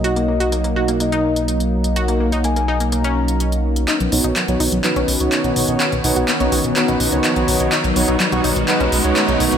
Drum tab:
HH |xx-xxx-xxx-xxx-x|xx-xxx-xxx-xxx-x|xxoxxxoxxxoxxxox|xxoxxxoxxxoxxxox|
CP |----------------|----------------|x---x---x---x---|x---x---x---x---|

HH |xxoxxxoxxxoxxxox|
CP |x---x---x---x---|